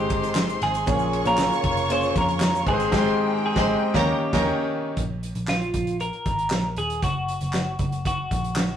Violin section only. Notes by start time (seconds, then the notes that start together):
Already playing: C5 C6
0.87 C#5 C#6
2.66 C5 C6
2.92 C5 C6
3.56 C5 C6
3.95 A#4 A#5
4.33 A#4 A#5